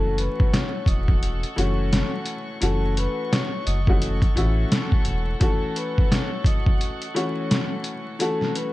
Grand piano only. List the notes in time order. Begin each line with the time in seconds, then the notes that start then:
Already playing: E3 A3 C#4 F#4
1.56 E3 A3 C#4 F#4
2.60 E3 A3 C#4 F#4
3.87 E3 A3 C#4 F#4
4.36 E3 A3 C#4 F#4
5.40 E3 A3 C#4 F#4
7.14 E3 A3 C#4 F#4
8.19 E3 A3 C#4 F#4